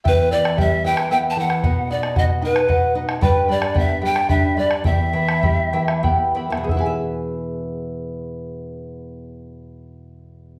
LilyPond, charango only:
\new Staff \with { instrumentName = "Charango" } { \time 6/8 \key e \minor \tempo 4. = 71 <e' g' b' e'' g''>8 <e' b' e'' g''>16 <e' b' g''>16 <e' g' b' e'' g''>8 <e' b' e'' g''>16 <e' b' g''>16 <e' g' b' e'' g''>8 <e' b' e'' g''>16 <e' b' g''>16 | <b' dis'' fis''>8 <b' dis'' fis''>16 <dis'' fis''>16 <b' dis'' fis''>8 <b' dis'' fis''>16 <dis'' fis''>16 <b' dis'' fis''>8 <b' dis'' fis''>16 <dis'' fis''>16 | <g' b' d'' g'' b''>8 <b' d'' g'' b''>16 <b' d'' b''>16 <g' b' d'' g'' b''>8 <b' d'' g'' b''>16 <b' d'' b''>16 <g' b' d'' g'' b''>8 <b' d'' g'' b''>16 <b' d'' b''>16 | <e' g' e'' g'' b''>8 <e' e'' g'' b''>16 <e' e'' b''>16 <e' g' e'' g'' b''>8 <e' e'' g'' b''>16 <e' e'' b''>16 <e' g' e'' g'' b''>8 <e' e'' g'' b''>16 <e' e'' b''>16 |
<e' gis' b' e'' gis''>2.~ | <e' gis' b' e'' gis''>2. | }